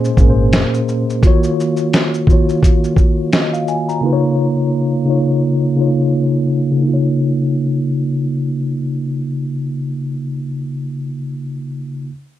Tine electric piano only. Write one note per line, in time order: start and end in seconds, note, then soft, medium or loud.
0.00 0.17 A#2 medium
0.00 0.19 A#3 medium
0.00 0.20 C#4 medium
0.00 0.21 G#4 medium
0.00 0.30 C5 medium
0.00 1.24 D#5 medium
0.17 1.09 A#2 medium
0.17 1.10 A#3 medium
0.17 1.10 C#4 medium
0.17 1.11 G#4 medium
0.23 0.28 A#4 medium
0.30 1.15 C5 medium
1.22 2.13 D#3 medium
1.22 2.14 A#3 medium
1.22 2.15 F4 medium
1.22 2.15 F#4 medium
1.27 2.16 C#5 medium
2.27 2.88 D#3 medium
2.27 2.89 A#3 medium
2.27 2.89 F4 medium
2.31 2.90 F#4 medium
2.31 2.91 C#5 medium
3.34 3.52 D#5 medium
3.53 3.66 F5 medium
3.68 3.87 G#5 medium
3.89 4.21 A#5 medium
4.01 4.93 C#3 medium
4.01 4.93 A#3 medium
4.01 4.94 D#4 medium
4.05 4.95 F4 medium
4.05 4.12 B4 medium
4.13 4.99 C#5 loud
5.05 5.66 C#3 medium
5.05 5.67 A#3 medium
5.05 5.68 D#4 medium
5.09 5.68 F4 medium
5.09 5.69 C#5 medium
5.75 6.67 C#3 medium
5.75 6.68 A#3 medium
5.75 6.68 D#4 medium
5.80 6.69 F4 medium
5.80 6.70 C#5 medium
6.71 10.28 C#3 medium
6.77 10.34 A#3 medium
6.82 10.39 D#4 medium
6.88 10.45 F4 medium
6.93 10.51 C#5 medium